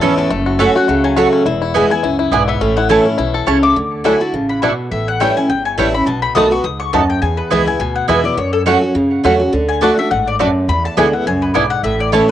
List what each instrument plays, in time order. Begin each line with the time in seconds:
Already playing: steel-string acoustic guitar E2, five-string banjo E4 A4
0.01 upright bass G#1, steel-string acoustic guitar E3 B3 C#4 E4, five-string banjo C#4, mandolin C#4 A4 E5 B5
0.18 five-string banjo A3, mandolin A5
0.30 upright bass F#1, steel-string acoustic guitar F#2, five-string banjo A3
0.46 five-string banjo F#4
0.59 steel-string acoustic guitar F#3 A3 C#4 F#4, mandolin A3 F#4 C#5 E5 F#5, five-string banjo A4
0.75 steel-string acoustic guitar C#4 F#4, five-string banjo F#4, mandolin F#5
0.88 upright bass C#2, steel-string acoustic guitar C#3, five-string banjo A3
1.04 five-string banjo F#3, mandolin G#5
1.16 steel-string acoustic guitar F#3 A3 C#4 F#4, mandolin A3 F#4 C#5 F#5 A5, five-string banjo F#4
1.33 five-string banjo C#4
1.45 upright bass E1, steel-string acoustic guitar E2, five-string banjo E4
1.62 five-string banjo E4
1.74 steel-string acoustic guitar E3 G#3 B3 E4, mandolin B3 E4 B4 G#5, five-string banjo B3
1.90 steel-string acoustic guitar B3 E4, five-string banjo E4, mandolin G#5
2.03 upright bass C#2, steel-string acoustic guitar F#2, five-string banjo E4
2.19 five-string banjo E4
2.31 upright bass B1, steel-string acoustic guitar G#2, mandolin B3 E4 B4 D5 G#5, five-string banjo E4
2.48 five-string banjo B3, mandolin E5
2.61 upright bass A1, steel-string acoustic guitar A2, five-string banjo C#4
2.77 five-string banjo E4, mandolin F#5
2.89 steel-string acoustic guitar E3 A3 C#4 E4, mandolin A3 E4 C#5 G#5 A5, five-string banjo A3
3.05 five-string banjo C#4, steel-string acoustic guitar C#4 E4
3.18 upright bass B1, steel-string acoustic guitar B2, five-string banjo E4
3.34 five-string banjo A4
3.47 upright bass C#2, steel-string acoustic guitar C#3, mandolin A3 E4 C#5 A5, five-string banjo C#4
3.63 five-string banjo A3, mandolin D6
3.76 upright bass D2, steel-string acoustic guitar D3
4.04 steel-string acoustic guitar F#3 A3 E4 F#4, mandolin A3 E4 D5 F#5 G#5, five-string banjo A3 D4 E4
4.20 steel-string acoustic guitar E4 F#4, mandolin A5
4.33 upright bass A1, steel-string acoustic guitar C#3
4.49 mandolin B5
4.62 steel-string acoustic guitar B2, mandolin A3 E4 D5 F#5 C#6, five-string banjo A3 D4 E4
4.91 upright bass A1, steel-string acoustic guitar A2, mandolin E5
5.08 mandolin F#5
5.20 steel-string acoustic guitar E3 G3 C#4 E4, mandolin A3 E4 C#5 G5, five-string banjo A3 C#4 E4
5.37 steel-string acoustic guitar C#4 E4, mandolin G#5
5.49 upright bass G1, steel-string acoustic guitar E2, mandolin G5
5.65 mandolin G#5
5.78 upright bass A1, steel-string acoustic guitar E3 G3 C#4 E4, mandolin A3 E4 C#5 G5 A5, five-string banjo A3 C#4 E4
5.94 steel-string acoustic guitar C#4 E4, mandolin B5
6.06 upright bass B1, steel-string acoustic guitar B2, mandolin A5
6.22 mandolin B5
6.35 upright bass B1, steel-string acoustic guitar D#3 A3 B3 F#4, five-string banjo A3 D#4 F#4, mandolin B3 F#4 D#5 A5 D#6
6.51 steel-string acoustic guitar B3 F#4, mandolin C#6
6.64 upright bass C#2, steel-string acoustic guitar G#2, mandolin D#6
6.80 mandolin C#6
6.93 upright bass D#2, steel-string acoustic guitar F#2, five-string banjo A3 D#4 F#4, mandolin B3 F#4 D#5 A5
7.10 mandolin G5
7.22 upright bass E2, steel-string acoustic guitar E2, mandolin G#5
7.37 mandolin B4
7.50 upright bass C#2, steel-string acoustic guitar E3 G#3 B3 E4, mandolin B3 E4 B4 E5 G#5, five-string banjo B3 E4
7.66 steel-string acoustic guitar B3 E4, mandolin G#5
7.80 upright bass D2, steel-string acoustic guitar B2, mandolin G#5
7.96 mandolin F#5
8.08 upright bass E2, steel-string acoustic guitar E3 G#3 B3 E4, mandolin B3 E4 B4 E5 G#5, five-string banjo B3 E4
8.24 steel-string acoustic guitar B3 E4, mandolin D5
8.37 upright bass F#2, steel-string acoustic guitar F#2, mandolin C#5
8.53 mandolin A4
8.66 steel-string acoustic guitar F#3 A3 C#4 F#4, mandolin A3 F#4 C#5 F#5, five-string banjo A3 C#4 F#4
8.81 steel-string acoustic guitar C#4 F#4
8.95 upright bass F#2, steel-string acoustic guitar C#3
9.23 upright bass E2, steel-string acoustic guitar F#3 A3 C#4 F#4, mandolin A3 F#4 C#5 F#5, five-string banjo A3 C#4 F#4
9.39 steel-string acoustic guitar C#4 F#4
9.53 upright bass D2, steel-string acoustic guitar D3
9.69 mandolin G#5
9.81 steel-string acoustic guitar D3 A3 D4 F#4, mandolin A3 F#4 D5 F#5 A5, five-string banjo A3 D4 F#4
9.98 steel-string acoustic guitar D4 F#4, mandolin E5
10.11 upright bass A1, steel-string acoustic guitar G#2, mandolin F#5
10.28 mandolin D5
10.39 steel-string acoustic guitar F#2, mandolin A3 F#4 D5 A5, five-string banjo A3 D4 F#4
10.68 upright bass E2, steel-string acoustic guitar E2, mandolin B5
10.85 mandolin A5
10.97 upright bass D2, steel-string acoustic guitar D3 G#3 B3 E4, mandolin B3 E4 D5 G#5, five-string banjo B3 D4 E4
11.13 steel-string acoustic guitar B3 E4, mandolin F#5
11.26 upright bass C#2, steel-string acoustic guitar F#2, mandolin G#5
11.42 mandolin B4
11.54 upright bass B1, steel-string acoustic guitar G#2, mandolin B3 E4 D5 G#5, five-string banjo B3 D4 E4
11.70 mandolin F#5
11.83 upright bass A1, steel-string acoustic guitar A2, mandolin E5
12.00 mandolin D5
12.12 steel-string acoustic guitar E3 A3 C#4 E4, mandolin A3 E4 C#5 A5, five-string banjo A3 C#4 E4
12.28 steel-string acoustic guitar E4